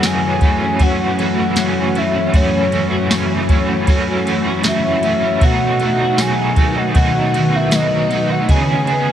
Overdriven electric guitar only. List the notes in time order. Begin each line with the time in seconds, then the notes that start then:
0.02 F#2 C#3 E3 A3 C#4 F#4
0.40 E3 A3 C#4 F#4
0.79 E3 A3 C#4
0.83 F#4
1.17 E3 A3 C#4 F#4
1.56 F#2 C#3 E3 A3 C#4 F#4
1.94 A3 C#4 F#4
1.98 E3
2.33 F#2 C#3 E3 A3 C#4 F#4
2.71 A3 C#4 F#4
2.75 E3
3.10 F#2 C#3 E3 A3 C#4 F#4
3.48 E3 A3 C#4 F#4
3.86 E3 A3 C#4
3.90 F#4
4.25 E3 A3 C#4 F#4
4.64 F#2 C#3 E3 A3 C#4 F#4
5.03 E3 A3 C#4 F#4
5.41 B2 F#3 A3 D#4 F#4
5.79 A3 D#4 F#4
6.18 B2 F#3 A3 D#4 F#4
6.56 D#4 F#4
6.60 A3
6.94 F#3 A3 D#4 F#4
7.33 A3 D#4 F#4
7.72 B2 F#3 A3 D#4 F#4
8.10 A3 D#4 F#4
8.49 C#3 E3 B3 C#4 G#4
8.87 C#4 G#4
8.91 B3